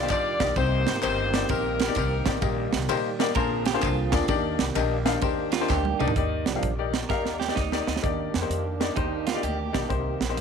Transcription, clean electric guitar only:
3.35 3.65 A#4 medium
3.66 3.82 G4 medium
3.82 4.27 F4 medium
5.53 5.68 F4 medium
5.70 5.99 G4 medium
5.99 6.44 D#4 medium
7.09 7.39 A#4 medium
7.40 7.55 G4 medium
7.55 8.00 D#4 medium
8.96 9.26 D#4 medium
9.27 9.43 F4 medium
9.43 9.88 G4 medium

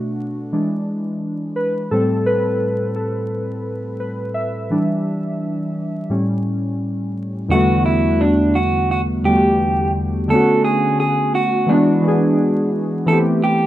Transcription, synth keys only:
0.00 0.54 B2 medium
0.00 0.54 A3 soft
0.00 0.53 D4 medium
0.00 0.54 F#4 medium
0.52 1.53 E3 soft
0.52 1.53 G#3 soft
0.52 1.53 D4 medium
1.56 1.89 B4 medium
1.91 2.92 A2 medium
1.91 2.92 G3 medium
1.91 2.93 C4 medium
1.91 2.27 A4 loud
2.26 2.98 B4 loud
2.96 3.62 A4 medium
4.00 4.36 B4 medium
4.34 5.01 E5 medium
4.70 5.20 E3 medium
4.70 5.20 G3 medium
4.70 5.20 D4 medium
6.09 7.45 A2 medium
6.09 7.46 G3 medium
6.09 7.46 C#4 medium
7.48 8.76 E2 medium
7.48 8.77 D3 medium
7.48 8.77 G3 medium
7.48 8.78 A3 medium
7.54 8.79 B3 medium
7.54 8.80 F#4 loud
9.23 10.19 E2 medium
9.23 10.19 D3 medium
9.23 10.20 G3 medium
9.27 10.21 A3 medium
9.27 10.22 B3 medium
9.27 9.35 F#4 medium
9.36 10.26 G4 medium
10.28 11.55 D3 medium
10.28 11.56 A3 medium
10.28 11.57 B3 medium
10.33 11.58 C#4 medium
10.33 11.59 F#4 loud
11.66 11.99 E3 medium
11.66 12.00 G#3 medium
11.66 12.01 B3 medium
11.72 12.02 D4 medium
11.72 12.02 F#4 medium
12.01 12.97 E3 medium
12.01 12.98 G#3 medium
12.01 12.99 B3 medium
12.06 13.00 D4 medium
12.06 13.01 G#4 medium
13.06 13.67 E3 medium
13.06 13.67 A3 medium
13.06 13.67 B3 medium
13.11 13.67 C4 medium
13.11 13.67 G4 medium

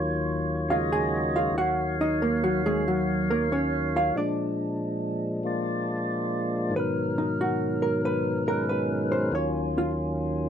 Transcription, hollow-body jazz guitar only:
0.70 0.91 F4 medium
0.70 0.90 F5 medium
0.92 1.35 G#4 medium
0.92 1.35 G#5 medium
1.36 1.56 F4 medium
1.36 1.55 F5 medium
1.58 2.00 F#4 medium
1.58 2.00 F#5 medium
2.01 2.20 D#4 medium
2.01 2.20 D#5 medium
2.22 2.43 A#3 medium
2.22 2.42 A#4 medium
2.44 2.64 F#3 medium
2.44 2.64 F#4 medium
2.66 2.86 G#3 medium
2.66 2.86 G#4 medium
2.88 3.30 F#3 medium
2.88 3.30 F#4 medium
3.31 3.50 A#3 medium
3.31 3.50 A#4 medium
3.52 3.95 C#4 medium
3.52 3.94 C#5 medium
3.96 4.15 F4 medium
3.96 4.15 F5 medium
4.17 5.42 D4 medium
4.17 5.42 D5 medium
6.76 7.18 B4 medium
7.18 7.38 D#4 medium
7.41 7.83 F#4 medium
7.82 8.02 A#4 medium
8.05 8.47 B4 medium
8.48 8.68 A#4 medium
8.69 9.12 B4 medium
9.12 9.32 C5 medium
9.35 9.77 C#5 medium
9.78 9.90 F4 medium

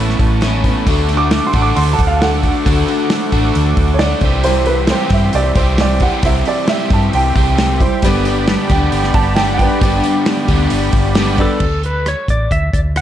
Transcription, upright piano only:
0.00 0.59 C#6 medium
1.17 1.46 D6 loud
1.47 1.61 C6 medium
1.62 1.76 D6 medium
1.76 1.91 C6 medium
1.93 2.07 A5 medium
2.07 2.21 F5 medium
2.21 3.07 A4 medium
2.21 3.09 F#5 medium
3.94 3.98 C#5 medium
3.99 4.43 D5 loud
4.44 4.66 C5 loud
4.67 4.89 B4 loud
4.91 5.12 C5 medium
5.13 5.35 E5 medium
5.35 5.57 D5 loud
5.57 5.79 C5 medium
5.81 6.02 D5 medium
6.02 6.24 F#5 medium
6.25 6.47 E5 loud
6.48 6.69 D5 medium
6.69 6.91 E5 loud
6.93 7.14 A5 medium
7.15 8.45 G5 loud
8.71 9.14 G5 medium
9.14 9.37 A5 loud
9.35 9.56 G5 medium
9.53 9.57 F#5 medium
9.58 10.89 G5 loud

